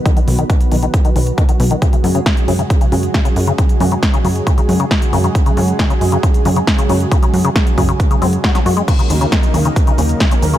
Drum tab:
CC |----------------|----------------|----------------|----------------|
HH |xxoxxxoxxxoxxxox|xxoxxxoxxxoxxxox|xxoxxxoxxxoxxxox|xxoxxxoxxxoxxxox|
SH |----------------|----------------|----------------|----------------|
SD |----------------|----o-------o---|----o-------o---|----o-------o---|
BD |o---o---o---o---|o---o---o---o---|o---o---o---o---|o---o---o---o---|

CC |----------------|x---------------|
HH |xxoxxxoxxxoxxxox|xxoxxxoxxxoxxxox|
SH |----------------|xxxxxxxxx-xxxxxx|
SD |----o-------oo--|----o-------o---|
BD |o---o-o-o---o---|o---o---o---o---|